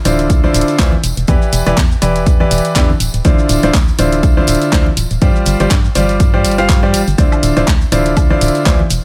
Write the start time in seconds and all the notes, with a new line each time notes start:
0.05 D1 D3 E4 F4 C5 D5, open hi-hat, tambourine, high conga, shaker
0.19 closed hi-hat, tambourine, shaker
0.30 D2, kick, closed hi-hat, tambourine, shaker
0.44 D3 E4 F4 C5 D5, tambourine, high conga
0.54 D1, open hi-hat, tambourine, shaker
0.61 closed hi-hat
0.68 closed hi-hat, tambourine, shaker
0.79 D2 E3 E4 F4 C5 D5, kick, clap, closed hi-hat, tambourine, shaker
0.92 tambourine, high conga
1.04 E1, open hi-hat, tambourine, shaker
1.17 E1, closed hi-hat, tambourine, shaker
1.27 E2 E3 E4 G4 B4 D5, kick, closed hi-hat, tambourine, high conga, shaker
1.42 tambourine, shaker
1.53 E1, open hi-hat, tambourine, shaker
1.66 E1 E3 E4 G4 B4 D5, closed hi-hat, tambourine, high conga, shaker
1.77 E2, kick, clap, closed hi-hat, tambourine, shaker
1.91 tambourine, shaker
2.02 E1 E3 E4 G4 B4 D5, open hi-hat, tambourine, high conga, shaker
2.16 closed hi-hat, tambourine, shaker
2.26 E2, kick, closed hi-hat, tambourine, shaker
2.40 E3 E4 G4 B4 D5, tambourine, high conga
2.51 E1, open hi-hat, tambourine, shaker
2.58 closed hi-hat
2.65 closed hi-hat, tambourine, shaker
2.76 E2 D3 E4 G4 B4 D5, kick, clap, closed hi-hat, tambourine, shaker
2.90 tambourine, high conga
3.00 D1, open hi-hat, tambourine, shaker
3.14 D1, closed hi-hat, tambourine, shaker
3.25 D2 D3 E4 F4 C5 D5, kick, closed hi-hat, tambourine, high conga, shaker
3.39 tambourine, shaker
3.49 D1, open hi-hat, tambourine, shaker
3.63 D1 D3 E4 F4 C5 D5, closed hi-hat, tambourine, high conga, shaker
3.74 D2, kick, clap, closed hi-hat, tambourine, shaker
3.88 tambourine, shaker
3.99 D1 D3 E4 F4 C5 D5, open hi-hat, tambourine, high conga, shaker
4.12 closed hi-hat, tambourine, shaker
4.23 D2, kick, closed hi-hat, tambourine, shaker
4.37 D3 E4 F4 C5 D5, tambourine, high conga
4.47 D1, open hi-hat, tambourine, shaker
4.55 closed hi-hat
4.62 closed hi-hat, tambourine, shaker
4.72 D2 D3 E4 F4 C5 D5, kick, clap, closed hi-hat, tambourine, shaker
4.86 tambourine, high conga
4.97 D1, open hi-hat, tambourine, shaker
5.11 D1, closed hi-hat, tambourine, shaker
5.22 G2 G3 F4 G4 C5 D5, kick, closed hi-hat, tambourine, high conga, shaker
5.36 tambourine, shaker
5.46 G1, open hi-hat, tambourine, shaker
5.60 G1 G3 F4 G4 C5 D5, closed hi-hat, tambourine, high conga, shaker
5.69 G2, kick, clap, closed hi-hat, tambourine, shaker
5.84 tambourine, shaker
5.95 G1 G3 F4 G4 C5 D5, open hi-hat, tambourine, high conga, shaker
6.09 closed hi-hat, tambourine, shaker
6.20 G2, kick, closed hi-hat, tambourine, shaker
6.34 G3 F4 G4 C5 D5, tambourine, high conga
6.45 G1, open hi-hat, tambourine, shaker
6.51 closed hi-hat
6.58 G3 F4 G4 C5 F5, closed hi-hat, tambourine, shaker
6.69 G2, kick, clap, closed hi-hat, tambourine, shaker
6.83 G3 F4 G4 C5 D5, tambourine, high conga
6.94 G1, open hi-hat, tambourine, shaker
7.08 G1, closed hi-hat, tambourine, shaker
7.18 D2 D3 E4 F4 C5 D5, kick, closed hi-hat, tambourine, high conga, shaker
7.32 tambourine, high woodblock, shaker
7.43 D1, open hi-hat, tambourine, shaker
7.56 D1 D3 E4 F4 C5 D5, closed hi-hat, tambourine, high conga, shaker
7.67 D2, kick, clap, closed hi-hat, tambourine, shaker
7.81 tambourine, shaker
7.92 D1 D3 E4 F4 C5 D5, open hi-hat, tambourine, high conga, shaker
8.05 closed hi-hat, tambourine, shaker
8.17 D2, kick, closed hi-hat, tambourine, high woodblock, shaker
8.30 D3 E4 F4 C5 D5, tambourine, high conga
8.41 D1, open hi-hat, tambourine, shaker
8.48 closed hi-hat
8.55 closed hi-hat, tambourine, shaker
8.66 D2 E3 E4 F4 C5 D5, kick, clap, closed hi-hat, tambourine, shaker
8.79 tambourine, high conga
8.90 E1, open hi-hat, tambourine, shaker